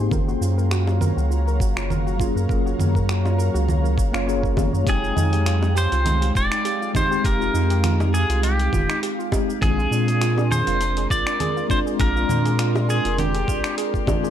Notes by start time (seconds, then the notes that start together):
Already playing: A#3 C4 D#4 G4
0.00 G#4
0.08 F#1 F#3 A#3 C#4 A#4 C#5 F5 A#5, kick, low conga, cabasa
0.12 F4 G#4
0.28 F#4, cabasa
0.41 F#2 F4, cabasa
0.58 A#4, cabasa
0.71 F#4, finger snap, cabasa
0.87 F4, high bongo, cabasa
1.01 A#4, low conga, cabasa
1.17 C#2 F#4, cabasa
1.30 F4, cabasa
1.47 A#4, cabasa
1.60 F#1 F#4, kick, cabasa
1.76 F#1 F4, finger snap, cabasa
1.90 A#4, low conga, cabasa
2.07 F#4, cabasa
2.18 A#3 C#4 F4 G#4, kick, cabasa
2.35 F#2 A#4, cabasa
2.46 F#1 A#3 C#4, kick
2.50 F4 G#4 A#4, cabasa
2.66 F#4, cabasa
2.79 F#2 F4, low conga, cabasa
2.95 A#4, kick, cabasa
3.09 F#4, finger snap, cabasa
3.25 F4, high bongo, cabasa
3.38 A#4, cabasa
3.54 C#2 F#4, cabasa
3.68 F4, low conga, cabasa
3.84 A#4, cabasa
3.97 F#1 C#5, kick, cabasa
4.12 F#1 A#3 C#4 F4 C#5 F5, finger snap, cabasa
4.26 A#3 C#4 F4 G#4 C#5, cabasa
4.43 A#4, kick, cabasa
4.57 A#4, kick, high bongo, low conga, cabasa
4.73 F#2 C#5, cabasa
4.84 F1 G#3 C4 G4 F5 G5, kick, closed hi-hat, cabasa
4.88 D#4 G#4 G5
5.03 F4, cabasa
5.16 F2 D#4, low conga, cabasa
5.32 G4, closed hi-hat, cabasa
5.46 F4, finger snap, closed hi-hat, cabasa
5.62 D#4, high bongo, cabasa
5.75 G4 C5, cabasa
5.92 C2 F4, closed hi-hat, cabasa
6.05 D#4, closed hi-hat, low conga, cabasa
6.21 G4, closed hi-hat, cabasa
6.35 D#1 F4 D5, kick, cabasa
6.51 D#4, finger snap, closed hi-hat, cabasa
6.65 G4, closed hi-hat, cabasa
6.81 F4, cabasa
6.93 G#3 C4 D#4 G4 C5, kick, low conga, cabasa
7.11 G4, cabasa
7.21 F1 G#3 C4 G4, kick, closed hi-hat
7.26 D#4 G4 A#4, cabasa
7.41 F4, cabasa
7.54 F2 D#4, cabasa
7.70 G4, closed hi-hat, cabasa
7.84 F4, finger snap, closed hi-hat, low conga, cabasa
8.00 D#4, high bongo, cabasa
8.14 G4 G#4, cabasa
8.29 C2 F4, closed hi-hat, cabasa
8.43 D#4 G4, closed hi-hat, cabasa
8.59 G4, closed hi-hat, cabasa
8.73 D#1 F4, kick, low conga, cabasa
8.89 D#4, finger snap, closed hi-hat, cabasa
9.03 G4, closed hi-hat, cabasa
9.19 F4, cabasa
9.31 G#3 C4 D#4 G4, kick, high bongo, cabasa
9.48 G4, cabasa
9.59 A#1 G#3 C4 G#4 A#4 D5 C6, kick, closed hi-hat, low conga
9.63 D4 F4, cabasa
9.78 F4, cabasa
9.91 A#2 D4, cabasa
10.08 G#4, closed hi-hat, cabasa
10.21 F4, finger snap, closed hi-hat, cabasa
10.37 D4, high bongo, cabasa
10.51 G#4 C5, low conga, cabasa
10.67 F1 F4, closed hi-hat, cabasa
10.81 D4, closed hi-hat, cabasa
10.97 G#4, closed hi-hat, cabasa
11.10 G#1 F4 D5, kick, cabasa
11.27 D4, finger snap, closed hi-hat, cabasa
11.40 G#4, closed hi-hat, low conga, cabasa
11.57 F4, cabasa
11.68 G#3 C4 D4 F4 C5, kick, cabasa
11.86 G#4, cabasa
11.96 A#1 G#3 C4 G#4, kick, closed hi-hat
12.00 D4 F4 A#4, cabasa
12.16 F4, cabasa
12.29 A#2 D4, low conga, cabasa
12.45 G#4, closed hi-hat, cabasa
12.59 F4, finger snap, closed hi-hat, cabasa
12.75 D4, high bongo, cabasa
12.89 G#4, cabasa
13.05 F1 F4, closed hi-hat, cabasa
13.18 D4 G4, closed hi-hat, low conga, cabasa
13.35 G#4, closed hi-hat, cabasa
13.48 G#1 F4, kick, cabasa
13.64 D4, finger snap, closed hi-hat, cabasa
13.78 G#4, closed hi-hat, cabasa
13.94 F4, kick, cabasa
14.06 G#3 C4 D4 F4, kick, high bongo, low conga, cabasa
14.24 G#4, cabasa